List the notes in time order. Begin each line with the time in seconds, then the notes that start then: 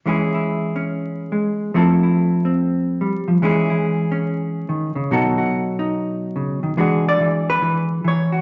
0.06 E3 G#3 C#4 E4 G#4
0.34 E4
0.76 C#4
1.32 G#3
1.74 F3 A3 C4 E4 A4
2.03 E4
2.45 C4
3.01 G3
3.28 F3
3.42 E3 G#3 C#4 E4 G#4
3.70 E4
4.12 C#4
4.69 D#3
4.95 C#3
5.11 B2 F#3 D#4 F#4 A4
5.38 F#4
5.79 D#4
6.36 C#3
6.63 D#3
6.77 E3 G#3 D4 F#4 G#4
7.09 D5
7.20 E3
7.50 B4
7.62 E3
8.04 E3 C#5
8.32 F#4